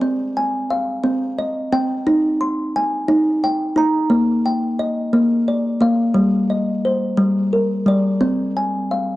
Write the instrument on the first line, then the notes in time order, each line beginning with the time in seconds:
kalimba
Already playing: D5 G#5
0.02 C4
0.37 G#5
0.71 F5
1.04 C4
1.39 D#5
1.72 C4 G5
2.07 D#4
2.41 C6
2.76 G#5
3.08 D#4
3.44 G5
3.76 D#4 A#5
4.10 A#3
4.46 G5
4.79 D#5
5.13 A#3
5.48 D5
5.81 A#3 F5
6.15 G3
6.50 D#5
6.85 C5
7.18 G3
7.53 A#4
7.86 G3 D5
8.21 C4
8.56 G#5
8.91 F5